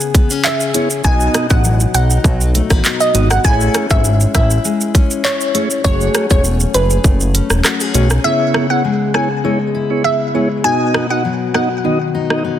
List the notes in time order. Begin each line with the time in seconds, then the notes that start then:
Already playing: C#3 B3 C#4 G#4
0.01 shaker
0.15 B3, kick, closed hi-hat, shaker
0.30 C#4, shaker
0.44 G#4 E5, clap, shaker
0.60 shaker
0.74 B3 C#4 E4 G#4 C#5, closed hi-hat, shaker
0.90 shaker
1.04 B1 B3 D#4 F#4 D#5 G#5, kick, shaker
1.20 shaker
1.34 B3, cross-stick, closed hi-hat, shaker
1.50 A1 B3 D#4 F#4 D#5 F#5, kick, shaker
1.64 F#3, shaker
1.80 shaker
1.94 B1 D#4 F#5, closed hi-hat, shaker
2.11 shaker
2.24 B1 F#3, kick, shaker
2.41 shaker
2.54 A3, closed hi-hat, shaker
2.70 A1 B3, kick, cross-stick, shaker
2.84 D#4, clap, shaker
3.00 D#5, shaker
3.14 G#1 B3 D#4 F#4 D#5, closed hi-hat, shaker
3.31 F#5, cross-stick, shaker
3.44 A1 A3 E4 G#4 C#5 G#5, kick, shaker
3.61 shaker
3.74 C#4, cross-stick, closed hi-hat, shaker
3.90 G#1 A3 E4 G#4 C#5 E5, kick, shaker
4.04 G#3, shaker
4.20 shaker
4.35 A1 E4 E5, kick, cross-stick, closed hi-hat, shaker
4.51 shaker
4.65 G#3, shaker
4.81 shaker
4.95 C#4, kick, closed hi-hat, shaker
5.11 shaker
5.25 E4 C#5, clap, shaker
5.41 shaker
5.54 A3 C#4 E4 G#4 C#5, closed hi-hat, shaker
5.71 shaker
5.84 F#1 F#3 A3 F#4 G#4 C#5, kick, shaker
6.01 shaker
6.15 C#4, cross-stick, closed hi-hat, shaker
6.30 E1 A3 F#4 G#4 C#5, kick, shaker
6.44 A3, shaker
6.60 shaker
6.74 F#1 G#4 B4, closed hi-hat, shaker
6.90 shaker
7.04 F#1 A3, kick, shaker
7.20 shaker
7.35 C#4, closed hi-hat, shaker
7.50 E1, cross-stick, shaker
7.64 F#4, cross-stick, clap, shaker
7.80 G#4, shaker
7.94 B1 A3 C#4 F#4 G#4 C#5, closed hi-hat, shaker
8.10 cross-stick, shaker
8.24 C#3 B3 E4 G#4 C#5 E5
8.54 B3, cross-stick
8.70 B3 E4 G#4 C#5 F#5
8.85 G#3
9.14 B3 E4 G#4 C#5 G#5, cross-stick
9.44 G#3 B3 E4 G#4 C#5
9.75 E4
9.90 B3 E4 G#4 C#5
10.04 B3 E5
10.34 G#3 B3 E4 G#4 C#5
10.64 B2 B3 D#4 F#4 D#5 G#5
10.94 B3, cross-stick
11.10 B3 D#4 F#4 D#5 F#5
11.25 F#3
11.54 B3 D#4 F#4 D#5 F#5, cross-stick
11.84 D#3 B3 D#4 F#4 D#5
12.15 D#4
12.30 B3 D#4 F#4 D#5, cross-stick
12.45 B3